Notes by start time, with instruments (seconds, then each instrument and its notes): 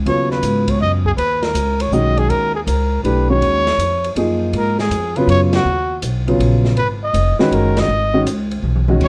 0.05 upright bass D#2, upright piano C#3 F#3 B3 F4, trumpet C#5, ride
0.31 trumpet B4, snare
0.42 upright bass G#2, hi-hat pedal, ride
0.68 trumpet C#5, kick, ride
0.80 upright bass F#2, trumpet D#5
1.05 trumpet G#4, kick
1.17 upright bass D#2, trumpet B4, ride
1.43 trumpet A#4, snare, ride
1.54 upright bass C#2, hi-hat pedal, ride
1.80 trumpet C#5, ride
1.91 upright bass B1, upright piano D#3 G#3 C#4 F#4, trumpet D#5, hi-hat pedal
2.17 trumpet G#4, ride
2.29 upright bass D#2, trumpet A#4, ride
2.55 trumpet G#4
2.66 upright bass C#2, trumpet A#4, hi-hat pedal, ride
3.04 upright bass B1, upright piano E3 A3 D4 G4, trumpet B4, ride
3.29 upright piano D#3 G#3 C#4 F#4, trumpet C#5
3.41 upright bass D#2, ride
3.67 snare, ride
3.77 upright bass F2, hi-hat pedal, ride
4.04 ride
4.15 upright bass F#2, upright piano F3 A#3 D#4 G#4, ride
4.53 upright bass G#2, ride
4.57 trumpet A#4
4.79 trumpet G#4, snare
4.90 upright bass F2, hi-hat pedal, ride
5.16 upright piano C#3 F#3 B3 F4, trumpet B4, ride
5.27 upright bass F#2, trumpet C#5, ride
5.53 trumpet F#4, snare, ride
5.65 upright bass D#2
6.02 upright bass B1, hi-hat pedal, ride
6.27 upright piano C#3 F#3 B3 F4, ride
6.39 upright bass A#1, ride
6.65 snare
6.76 upright bass G#1, trumpet B4, ride
7.03 trumpet D#5
7.13 upright bass F1, hi-hat pedal, ride
7.39 upright piano D#3 G#3 C#4 F#4, trumpet B4, snare
7.51 upright bass F#1, trumpet A#4, ride
7.77 trumpet D#5, snare, ride
7.88 upright bass G#1
8.14 upright piano D#3 G#3 C#4 F#4
8.25 upright bass C#2, hi-hat pedal, ride
8.51 ride
8.62 upright bass B1, mid tom
8.76 mid tom
8.88 upright piano D#3 G#3 C#4 F#4, mid tom
9.00 upright bass D#2, trumpet C#5, kick, crash